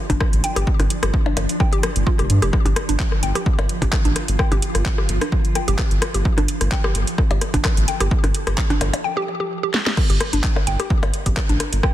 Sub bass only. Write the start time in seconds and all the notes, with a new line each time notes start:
0.10 G1
0.33 A1
0.56 G1
0.80 G1
1.03 G1
1.37 G1
1.96 G1
2.19 F1
2.30 G2
2.42 F1
2.66 G1
2.89 G1
3.23 G1
3.59 G1
3.82 G1
4.05 A1
4.28 G1
4.52 G1
4.75 G1
5.09 G1
5.68 G1
5.91 G1
6.14 G1
6.38 G1
6.61 G1
6.95 G1
7.31 G1
7.54 G1
7.77 A1
8.01 G1
8.24 G1
8.47 G1
8.81 G1
10.10 G1
10.33 G1
10.67 G1
11.03 G1
11.26 G1
11.49 A1
11.73 G1